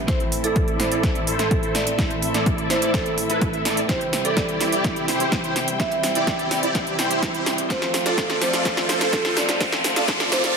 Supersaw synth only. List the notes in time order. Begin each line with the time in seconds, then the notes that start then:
0.08 E4 A4 C5
0.44 E4 A4 D5
0.92 E4 A4 D5
1.27 E4 A4 C5
1.63 E4 A4 C5
1.99 E4 A4 C5
2.34 E4 A4 D5
2.82 E4 A4 D5
3.30 E4 A4 B4
3.53 E4 A4 E5
3.65 E4 A4 D5
3.89 E4 G4 C5
4.25 E4 G4 D5
4.73 E4 G4 D5
5.08 E4 G4 C5
5.44 E4 G4 C5
5.80 E4 G4 C5
6.16 E4 G4 D5
6.63 E4 G4 D5
6.99 E4 G4 C5
7.34 E4 G4 C5
7.70 F4 A4 C5
8.06 F4 A4 D5
8.53 F4 A4 D5
8.89 F4 A4 C5
9.25 F4 A4 C5
9.61 F4 A4 C5
9.96 F4 A4 D5
10.44 F4 A4 D5